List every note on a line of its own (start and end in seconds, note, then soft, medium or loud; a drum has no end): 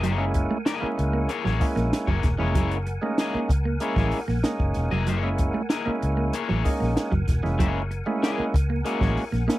0.00 0.13 F#3 medium
0.00 0.23 A#3 medium
0.00 0.23 E4 medium
0.00 9.59 A#4 medium
0.00 9.59 F#5 medium
0.00 9.59 G#5 medium
0.00 closed hi-hat medium
0.04 0.46 F#1 loud
0.04 0.24 G#4 medium
0.04 0.24 C#5 medium
0.18 0.58 G#3 medium
0.18 0.58 A#3 medium
0.18 0.58 C#4 medium
0.18 0.58 E4 loud
0.34 muted clean electric guitar stroke medium
0.34 kick medium
0.34 closed hi-hat medium
0.51 0.60 A3 medium
0.65 0.86 A#3 medium
0.65 0.86 E4 medium
0.65 0.87 G#4 medium
0.65 0.87 D#5 loud
0.65 snare loud
0.65 closed hi-hat medium
0.80 1.30 G#3 medium
0.80 1.31 A#3 medium
0.80 0.92 A#3 medium
0.80 1.31 C#4 medium
0.80 1.31 E4 loud
0.80 muted fingered electric bass stroke soft
0.98 1.26 C#2 medium
0.98 muted clean electric guitar stroke soft
0.98 closed hi-hat medium
1.13 1.23 A#3 medium
1.29 1.44 A#3 medium
1.29 1.44 E4 medium
1.29 1.45 G#4 medium
1.29 1.44 C#5 medium
1.29 closed hi-hat medium
1.44 1.60 A1 loud
1.44 1.54 F#3 medium
1.44 1.65 A#3 medium
1.44 1.64 E4 medium
1.44 1.64 G#4 medium
1.44 1.64 C#5 medium
1.44 snare soft
1.60 2.10 G#3 medium
1.60 2.10 A#3 medium
1.60 2.10 C#4 medium
1.60 2.10 E4 medium
1.60 muted clean electric guitar stroke soft
1.60 kick medium
1.60 open hi-hat medium
1.76 1.91 A#1 loud
1.76 1.86 A#3 medium
1.76 snare soft
1.76 closed hi-hat medium
1.93 snare loud
1.93 closed hi-hat medium
2.07 2.22 F#1 medium
2.07 2.17 F#3 medium
2.07 2.28 A#3 medium
2.07 2.27 E4 medium
2.07 2.27 G#4 medium
2.07 2.27 C#5 medium
2.07 kick medium
2.23 2.38 E1 loud
2.23 muted clean electric guitar stroke soft
2.23 kick medium
2.23 snare soft
2.23 closed hi-hat medium
2.38 2.56 F1 medium
2.38 2.48 E3 medium
2.38 2.78 G#3 medium
2.38 2.78 A#3 medium
2.38 2.55 A#3 medium
2.38 2.78 C#4 medium
2.38 2.79 E4 medium
2.38 2.55 E4 medium
2.38 2.55 G#4 medium
2.38 2.55 C#5 medium
2.55 2.97 F#1 loud
2.55 2.65 F#3 loud
2.55 2.75 A#3 medium
2.55 2.75 E4 medium
2.55 2.75 G#4 medium
2.55 2.75 C#5 medium
2.55 kick loud
2.55 closed hi-hat medium
2.71 closed hi-hat medium
2.87 muted clean electric guitar stroke soft
2.87 closed hi-hat medium
3.01 3.51 G#3 loud
3.01 3.12 A3 medium
3.01 3.52 A#3 medium
3.01 3.52 C#4 medium
3.01 3.52 D#4 loud
3.18 3.38 A#3 medium
3.18 3.38 E4 medium
3.18 3.38 G#4 medium
3.18 3.39 D#5 loud
3.18 snare loud
3.18 closed hi-hat medium
3.34 3.44 A#3 medium
3.34 muted fingered electric bass stroke soft
3.49 3.78 C#2 medium
3.49 muted clean electric guitar stroke soft
3.49 kick loud
3.49 closed hi-hat medium
3.65 3.75 A#3 medium
3.80 4.20 G#3 medium
3.80 4.20 A#3 medium
3.80 3.96 A#3 medium
3.80 4.21 C#4 medium
3.80 4.21 E4 medium
3.80 3.97 E4 medium
3.80 3.97 G#4 medium
3.80 3.97 C#5 medium
3.80 closed hi-hat medium
3.96 4.11 A1 medium
3.96 4.06 F#3 medium
3.96 4.17 A#3 medium
3.96 4.17 E4 medium
3.96 4.17 G#4 medium
3.96 4.16 C#5 medium
3.96 kick medium
3.96 snare soft
4.12 muted clean electric guitar stroke soft
4.12 open hi-hat medium
4.28 4.43 A#1 medium
4.28 4.38 A#3 medium
4.28 snare soft
4.43 4.93 G#3 medium
4.43 4.93 A#3 medium
4.43 4.54 A#3 medium
4.43 4.93 C#4 medium
4.43 4.94 D#4 medium
4.43 snare loud
4.43 closed hi-hat medium
4.60 4.74 F#1 medium
4.60 muted clean electric guitar stroke soft
4.60 kick medium
4.74 4.90 E1 loud
4.74 snare soft
4.74 closed hi-hat medium
4.91 5.08 F1 medium
4.91 5.01 F#3 medium
4.91 5.06 A#3 medium
4.91 5.07 E4 medium
4.91 5.07 G#4 medium
4.91 5.09 D#5 medium
5.07 5.50 F#1 medium
5.07 5.17 F#3 medium
5.07 5.27 A#3 medium
5.07 5.28 E4 medium
5.07 5.28 G#4 medium
5.07 5.28 C#5 medium
5.07 closed hi-hat medium
5.23 5.62 G#3 medium
5.23 5.62 A#3 medium
5.23 5.63 C#4 medium
5.23 5.63 E4 medium
5.38 muted clean electric guitar stroke soft
5.38 kick medium
5.38 closed hi-hat medium
5.54 5.64 A3 medium
5.69 5.89 A#3 medium
5.69 5.89 E4 medium
5.69 5.90 G#4 medium
5.69 5.90 D#5 medium
5.69 snare loud
5.69 closed hi-hat loud
5.86 6.35 G#3 medium
5.86 5.95 A#3 medium
5.86 6.35 A#3 medium
5.86 6.35 C#4 medium
5.86 6.36 E4 medium
5.86 muted fingered electric bass stroke soft
6.02 6.31 C#2 medium
6.02 muted clean electric guitar stroke medium
6.02 closed hi-hat medium
6.17 6.27 A#3 medium
6.33 6.48 A#3 medium
6.33 6.49 E4 medium
6.33 6.48 G#4 medium
6.33 6.47 C#5 medium
6.33 closed hi-hat loud
6.49 6.64 A1 medium
6.49 6.59 F#3 medium
6.49 6.69 A#3 medium
6.49 6.69 E4 medium
6.49 6.68 G#4 medium
6.49 6.68 C#5 medium
6.64 7.14 G#3 medium
6.64 7.14 A#3 medium
6.64 7.14 C#4 medium
6.64 7.14 D#4 loud
6.64 muted clean electric guitar stroke soft
6.64 kick medium
6.64 open hi-hat medium
6.80 6.95 A#1 medium
6.80 6.90 A#3 medium
6.80 snare soft
6.97 snare loud
6.97 closed hi-hat medium
7.12 7.27 F#1 medium
7.12 7.21 F#3 medium
7.12 kick medium
7.28 7.42 E1 loud
7.28 muted clean electric guitar stroke soft
7.28 kick loud
7.28 snare soft
7.28 closed hi-hat medium
7.43 7.60 F1 medium
7.43 7.53 E3 medium
7.43 7.83 G#3 medium
7.43 7.83 A#3 medium
7.43 7.83 C#4 medium
7.43 7.83 E4 medium
7.43 snare soft
7.59 8.02 F#1 loud
7.59 7.69 F#3 loud
7.59 7.79 A#3 medium
7.59 7.80 E4 medium
7.59 7.80 G#4 medium
7.59 7.80 C#5 medium
7.59 kick loud
7.59 closed hi-hat medium
7.91 muted clean electric guitar stroke soft
7.91 closed hi-hat medium
8.06 8.56 G#3 medium
8.06 8.16 A3 medium
8.06 8.56 A#3 medium
8.06 8.56 C#4 medium
8.06 8.56 E4 loud
8.22 8.43 A#3 medium
8.22 8.43 E4 medium
8.22 8.43 G#4 medium
8.22 8.43 D#5 medium
8.22 snare loud
8.22 closed hi-hat medium
8.38 8.48 A#3 medium
8.38 muted fingered electric bass stroke soft
8.54 8.82 C#2 medium
8.54 muted clean electric guitar stroke soft
8.54 kick loud
8.54 closed hi-hat medium
8.70 8.79 A#3 medium
8.85 9.24 G#3 medium
8.85 9.25 A#3 medium
8.85 9.00 A#3 medium
8.85 9.25 C#4 medium
8.85 9.01 E4 medium
8.85 9.25 F#4 medium
8.85 9.00 G#4 medium
8.85 9.00 C#5 medium
8.85 closed hi-hat loud
9.00 9.15 A1 loud
9.00 9.10 F#3 medium
9.00 9.21 A#3 medium
9.00 9.21 E4 medium
9.00 9.20 G#4 medium
9.00 9.20 C#5 medium
9.00 kick medium
9.00 snare soft
9.17 muted clean electric guitar stroke soft
9.17 open hi-hat medium
9.32 9.47 A#1 medium
9.32 9.42 A#3 medium
9.32 snare soft
9.32 closed hi-hat medium
9.47 9.59 G#3 medium
9.47 9.58 A#3 medium
9.47 9.59 A#3 medium
9.47 9.59 C#4 medium
9.47 9.59 E4 medium
9.47 snare loud
9.47 closed hi-hat medium